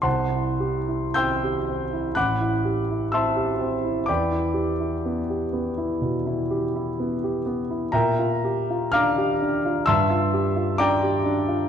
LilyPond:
\new Staff \with { instrumentName = "Grand piano" } { \time 4/4 \key e \minor \tempo 4 = 62 << { <c'' fis'' a'' c'''>4 <g'' c''' e''' g'''>4 <fis'' b'' d''' fis'''>4 <e'' a'' c''' e'''>4 | <d'' g'' b'' d'''>2.~ <d'' g'' b'' d'''>8 r8 | <bes' e'' g'' bes''>4 <f'' bes'' d''' f'''>4 <e'' a'' c''' e'''>4 <d'' g'' bes'' d'''>4 | } \\ { c,16 e'16 g'16 e'16 c'16 g'16 c'16 e'16 a,,16 e'16 g'16 e'16 c'16 g'16 c'16 e'16 | e,16 e'16 g'16 e'16 b16 g'16 b16 e'16 b,16 e'16 g'16 e'16 b16 g'16 b16 e'16 | bes,16 f'16 g'16 f'16 d'16 g'16 d'16 f'16 g,16 f'16 g'16 f'16 d'16 g'16 d'16 f'16 | } >> }